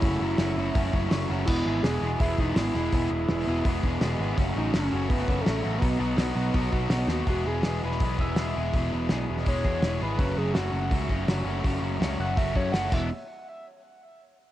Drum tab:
CC |----------------|x---------------|----------------|----------------|
HH |o---o---o---o---|----o---o---o---|o---o---o---o---|o---o---o---o---|
SD |----o-------o---|----o-------o-o-|----o-------o---|----o-------o---|
BD |o-------o-o-----|o-------o-o-----|o-------o-o-----|o-------o-o-----|

CC |----------------|----------------|----------------|----------------|
HH |o---o---o---o---|o---o---o---o---|o---o---o---o---|o---o---o---o---|
SD |----o-------o-o-|----o--o----o---|----o--o----o---|----o-------o---|
BD |o-------o-o-----|o-------o-o-----|o-------o-o-----|o-------o-o-----|

CC |--------------x-|----------------|
HH |o---o---o---o---|----------------|
SD |----o-------o---|----------------|
BD |o-------o-o---o-|----------------|